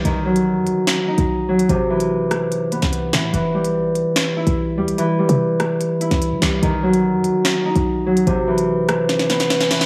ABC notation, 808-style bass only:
X:1
M:4/4
L:1/16
Q:1/4=146
K:Bphr
V:1 name="808-style bass" clef=bass
B,,,4- B,,, F,, B,,, z4 B,,,4- B,,, | A,,,8- A,,,3 C,,3 A,,2 | E,,,4 B,,,3 z4 B,,,3 E,, B,,, | z3 C,4- C, z3 C,,2 G, C,,2 |
B,,,4- B,,, F,, B,,, z4 B,,,4- B,,, | A,,,12 z4 |]